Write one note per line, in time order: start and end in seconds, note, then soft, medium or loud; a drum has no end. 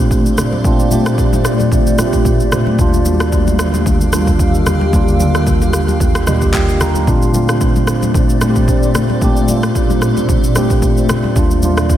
0.00 0.63 A#2 medium
0.00 2.75 A#2 medium
0.00 0.64 A3 medium
0.00 2.75 A3 medium
0.00 0.65 C4 medium
0.00 0.66 D4 medium
0.00 0.67 F4 loud
0.00 0.54 G4 medium
0.00 2.75 C5 medium
0.00 2.75 D5 medium
0.11 kick medium
0.11 shaker medium
0.26 shaker soft
0.38 cross-stick medium
0.38 low conga medium
0.38 shaker medium
0.53 high conga medium
0.63 0.86 A#2 medium
0.63 0.86 A3 medium
0.63 0.87 C4 medium
0.63 0.87 D4 medium
0.63 0.88 F4 loud
0.63 kick loud
0.63 shaker medium
0.79 shaker soft
0.90 1.77 A#2 medium
0.90 1.77 A3 medium
0.90 1.78 C4 medium
0.90 1.78 D4 medium
0.90 1.79 G4 medium
0.90 high conga medium
0.90 shaker medium
1.06 cross-stick medium
1.06 shaker medium
1.18 kick medium
1.18 shaker medium
1.33 high conga medium
1.33 shaker medium
1.45 cross-stick medium
1.45 shaker loud
1.60 high conga medium
1.60 shaker soft
1.72 kick loud
1.72 low conga medium
1.72 shaker medium
1.87 shaker medium
1.97 2.63 A#2 medium
1.97 2.64 A3 medium
1.97 2.64 C4 medium
1.97 2.65 D4 medium
1.97 2.07 F4 medium
1.97 cross-stick medium
1.97 high conga medium
1.97 shaker loud
2.07 2.68 G4 medium
2.13 kick medium
2.13 shaker medium
2.25 kick medium
2.25 shaker medium
2.40 shaker soft
2.52 cross-stick medium
2.52 low conga medium
2.52 shaker medium
2.67 high conga medium
2.78 3.00 D#2 medium
2.78 7.03 D#2 medium
2.78 7.03 D3 medium
2.78 3.01 G3 medium
2.78 3.01 A#3 medium
2.78 3.02 D4 medium
2.78 3.02 F4 loud
2.78 7.03 G4 medium
2.78 7.03 F5 medium
2.78 kick loud
2.78 shaker medium
2.94 shaker soft
3.04 3.91 D#2 medium
3.04 3.92 G3 medium
3.04 3.92 A#3 medium
3.04 3.93 D4 medium
3.04 3.14 F#4 medium
3.04 high conga medium
3.04 shaker loud
3.14 3.96 G4 medium
3.20 cross-stick medium
3.20 shaker medium
3.32 kick medium
3.32 shaker medium
3.47 high conga medium
3.47 shaker medium
3.59 cross-stick loud
3.59 shaker loud
3.74 high conga medium
3.74 shaker soft
3.86 kick loud
3.86 low conga medium
3.86 shaker medium
4.01 shaker medium
4.12 4.78 D#2 medium
4.12 4.78 G3 medium
4.12 4.79 A#3 medium
4.12 4.79 D4 medium
4.12 4.79 F4 loud
4.12 cross-stick medium
4.12 high conga medium
4.12 shaker loud
4.27 kick medium
4.27 shaker medium
4.39 kick medium
4.39 shaker medium
4.54 shaker soft
4.66 cross-stick medium
4.66 low conga medium
4.66 shaker medium
4.81 high conga medium
4.92 5.15 D#2 medium
4.92 5.15 G3 medium
4.92 5.15 A#3 medium
4.92 5.16 D4 medium
4.92 5.16 F4 medium
4.92 kick loud
4.92 low conga medium
4.92 shaker medium
5.08 shaker soft
5.19 6.06 D#2 medium
5.19 6.06 G3 medium
5.19 6.06 A#3 medium
5.19 6.07 D4 medium
5.19 6.07 F4 medium
5.19 high conga medium
5.19 shaker medium
5.35 cross-stick medium
5.35 high conga medium
5.35 shaker medium
5.47 kick medium
5.47 shaker medium
5.62 high conga medium
5.62 shaker soft
5.73 cross-stick medium
5.73 shaker loud
5.88 high conga medium
5.88 shaker soft
6.00 kick loud
6.00 low conga medium
6.00 shaker medium
6.15 cross-stick loud
6.15 shaker medium
6.26 6.92 D#2 medium
6.26 6.92 G3 medium
6.26 6.93 A#3 medium
6.26 6.93 D4 medium
6.26 6.94 G4 loud
6.26 6.52 D#5 medium
6.26 cross-stick medium
6.26 mid tom medium
6.26 high conga medium
6.26 shaker loud
6.42 kick medium
6.42 shaker medium
6.54 6.79 G5 medium
6.54 kick medium
6.54 clap medium
6.54 shaker medium
6.69 shaker soft
6.81 7.06 A#5 medium
6.81 cross-stick medium
6.81 low conga medium
6.81 shaker medium
6.95 high conga medium
6.95 shaker soft
7.06 7.29 A#2 medium
7.06 11.32 A#2 medium
7.06 7.29 A3 medium
7.06 11.32 A3 medium
7.06 7.30 C4 medium
7.06 7.30 D4 medium
7.06 7.31 F4 loud
7.06 11.32 C5 medium
7.06 11.32 D5 medium
7.06 kick loud
7.06 shaker medium
7.22 shaker soft
7.33 8.20 A#2 medium
7.33 8.20 A3 medium
7.33 8.21 C4 medium
7.33 8.21 D4 medium
7.33 8.22 F4 medium
7.33 high conga medium
7.33 shaker medium
7.49 cross-stick medium
7.49 shaker medium
7.61 kick medium
7.61 shaker medium
7.76 high conga medium
7.76 shaker medium
7.87 cross-stick medium
7.87 shaker medium
8.03 high conga medium
8.03 shaker soft
8.14 kick loud
8.14 low conga medium
8.14 shaker medium
8.29 shaker medium
8.40 9.06 A#2 medium
8.40 9.07 A3 medium
8.40 9.07 C4 medium
8.40 9.08 D4 medium
8.40 8.50 F4 medium
8.40 cross-stick loud
8.40 high conga medium
8.40 shaker loud
8.50 9.11 G4 loud
8.56 kick medium
8.56 shaker medium
8.68 kick medium
8.68 shaker medium
8.83 shaker soft
8.95 cross-stick medium
8.95 low conga medium
8.95 shaker medium
9.10 high conga medium
9.21 9.43 A#2 medium
9.21 9.44 A3 medium
9.21 9.44 C4 medium
9.21 9.44 D4 medium
9.21 9.45 G4 loud
9.21 kick loud
9.21 shaker medium
9.36 shaker soft
9.47 10.34 A#2 medium
9.47 10.35 A3 medium
9.47 10.35 C4 medium
9.47 9.56 C#4 medium
9.47 10.36 F4 medium
9.47 high conga medium
9.47 shaker medium
9.57 10.39 D4 medium
9.63 cross-stick medium
9.63 shaker medium
9.75 kick medium
9.75 shaker medium
9.90 high conga medium
9.90 shaker soft
10.02 cross-stick medium
10.02 shaker medium
10.17 high conga medium
10.17 shaker soft
10.29 kick loud
10.29 low conga medium
10.29 shaker medium
10.44 shaker medium
10.55 11.20 A#2 medium
10.55 11.21 A3 medium
10.55 11.21 C4 medium
10.55 11.22 D4 medium
10.55 11.22 G4 medium
10.55 cross-stick medium
10.55 high conga medium
10.55 shaker loud
10.70 kick medium
10.70 shaker medium
10.82 kick medium
10.82 shaker medium
10.97 shaker soft
11.09 cross-stick loud
11.09 low conga medium
11.09 shaker medium
11.24 high conga medium
11.35 11.57 D#2 medium
11.35 11.97 D#2 medium
11.35 11.97 D3 medium
11.35 11.58 G3 medium
11.35 11.58 A#3 medium
11.35 11.59 D4 medium
11.35 11.59 F4 loud
11.35 11.97 G4 medium
11.35 11.97 F5 medium
11.35 kick loud
11.35 shaker medium
11.51 shaker soft
11.62 11.97 D#2 medium
11.62 11.97 G3 medium
11.62 11.97 A#3 medium
11.62 11.97 D4 medium
11.62 11.97 F4 medium
11.62 high conga medium
11.62 shaker medium
11.77 cross-stick medium
11.77 shaker medium
11.90 kick medium
11.90 shaker medium